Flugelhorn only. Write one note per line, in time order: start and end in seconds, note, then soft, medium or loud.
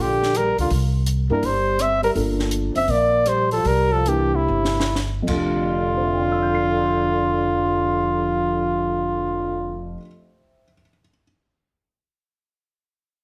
0.02 0.39 G4 medium
0.37 0.59 A#4 medium
0.61 0.71 F4 medium
1.32 1.47 A#4 medium
1.46 1.83 C5 medium
1.82 2.04 E5 medium
2.04 2.11 A#4 medium
2.77 2.93 E5 medium
2.91 3.30 D5 medium
3.28 3.52 C5 medium
3.52 3.69 A4 medium
3.67 3.94 A#4 medium
3.93 4.10 A4 medium
4.09 4.37 G4 medium
4.36 4.96 E4 medium
5.29 9.96 F4 medium